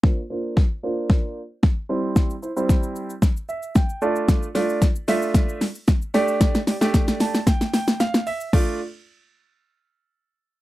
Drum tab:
CC |----------------|----------------|----------------|----------------|
HH |----------------|----------------|x-o-x-o-x-o-x-o-|x-o-x-o-x-o-x-o-|
SH |----------------|xxxxxxxxxxxxxxxx|xxxxxxxxxxxxxxxx|xxxxxxxxxxxxxxxx|
SD |o---o---o---o---|o---o---o---o---|o-o-o-o-o-o-o-o-|oooooooooooooo--|
BD |o---o---o---o---|o---o---o---o---|o---o---o---o---|o---o---o-------|

CC |x---------------|
HH |----------------|
SH |----------------|
SD |----------------|
BD |o---------------|